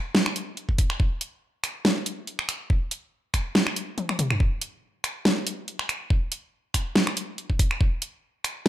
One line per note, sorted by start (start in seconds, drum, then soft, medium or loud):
0.15 snare loud
0.26 finger snap medium
0.36 closed hi-hat medium
0.57 closed hi-hat soft
0.69 kick medium
0.78 kick loud
0.78 closed hi-hat medium
0.90 finger snap medium
1.00 kick loud
1.21 closed hi-hat medium
1.64 finger snap medium
1.64 closed hi-hat medium
1.85 snare loud
2.06 closed hi-hat medium
2.27 closed hi-hat soft
2.39 finger snap medium
2.49 finger snap medium
2.49 closed hi-hat medium
2.70 kick loud
2.91 closed hi-hat medium
3.34 finger snap medium
3.34 kick medium
3.34 closed hi-hat medium
3.55 snare loud
3.67 finger snap medium
3.76 closed hi-hat medium
3.98 closed hi-hat soft
3.98 high tom medium
4.09 finger snap medium
4.09 high tom medium
4.19 closed hi-hat medium
4.19 mid tom medium
4.30 finger snap medium
4.30 mid tom medium
4.40 kick loud
4.61 closed hi-hat medium
5.04 finger snap medium
5.04 closed hi-hat medium
5.25 snare loud
5.47 closed hi-hat medium
5.68 closed hi-hat soft
5.79 finger snap medium
5.89 finger snap medium
5.89 closed hi-hat medium
6.10 kick loud
6.32 closed hi-hat medium
6.74 finger snap soft
6.74 kick medium
6.74 closed hi-hat medium
6.96 snare loud
7.07 finger snap medium
7.17 closed hi-hat medium
7.38 closed hi-hat soft
7.50 kick medium
7.59 kick loud
7.59 closed hi-hat medium
7.71 finger snap medium
7.81 kick loud
8.02 closed hi-hat medium
8.44 finger snap soft
8.44 closed hi-hat medium